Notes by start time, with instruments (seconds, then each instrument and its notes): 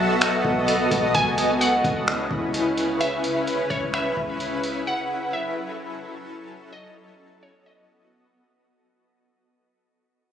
Already playing: 808-style bass B1, ambient pad B3 F#4 A4 D#5
0.21 finger snap, closed hi-hat
0.45 808-style bass B1, kick
0.68 closed hi-hat
0.91 808-style bass B1, kick, closed hi-hat
1.15 808-style bass C#2, ambient pad C#3 C#4 E4 B4, synth pluck G#5, kick, closed hi-hat
1.38 closed hi-hat
1.61 synth pluck F#5, closed hi-hat
1.84 808-style bass C#2, kick, closed hi-hat
2.08 finger snap
2.31 808-style bass C#2, kick
2.54 closed hi-hat
2.77 closed hi-hat
3.01 synth pluck E5, closed hi-hat
3.24 closed hi-hat
3.47 closed hi-hat
3.70 808-style bass C#2, synth pluck C#5, kick, closed hi-hat
3.94 synth pluck E5, finger snap
4.05 808-style bass B1
4.17 808-style bass C#2, kick
4.40 closed hi-hat
4.64 closed hi-hat
4.87 ambient pad F#3 C#4 A4, synth pluck F#5
5.33 synth pluck E5
6.73 ambient pad B3 F#4 D#5, synth pluck D#5
7.43 synth pluck C#5
7.66 synth pluck D#5